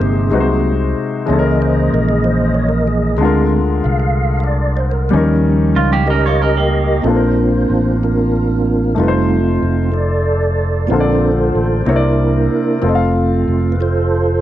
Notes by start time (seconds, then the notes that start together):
Already playing: C3 G#3 A#3 C4 D#4 G4 C5
0.00 G1 G#4
0.31 C2 C3 F#3 G#3 A#3 C4 D#4 F#4 B4
0.40 C5
1.26 C#2 C#3 E3 G#3 A#3 C#4 D#5
1.30 E4 A4 C#5
1.39 A#4
1.62 C5
1.93 A#1 A#4
2.09 G#4
2.24 C5
2.54 C#5
2.69 A#4
2.87 G#4
3.17 D2 D3 G#3 C4 D4
3.21 D3 F4 A#4
3.84 C2 F5
4.00 F5
4.40 D5 F5
4.77 C5
4.91 A#4
5.09 D#2 F3 G3 C#4
5.14 D#3 D#4 A#4
5.76 C#2 F4
5.93 A#3 G4
6.07 C#4 G4 A#4 D#5
6.26 F4 C#5
6.42 C#4 A#4
6.57 A#3 G4
7.02 A#1 A#3 C4 D4 F4 A4 C5
7.07 A#3 F4 A4
7.16 A#4
7.70 A1
8.03 D4 F4 A#4
8.95 F1 G3 A3 C4 D#4
9.00 F4 B4
9.08 C5
9.62 F1
9.92 A4 D5
10.87 A#1 A#3 C4 D4 F4 A4 C5
10.91 D3 F4 A4 C5
11.00 D5
11.55 A1
11.86 C2 C3 A#3 C4 D4 E4 A#4 C#5
11.96 D5
12.82 F1 A3 C4 F4
12.86 A4 D#5
12.95 F5
13.48 F1
13.72 B4
13.80 F4 A4 C5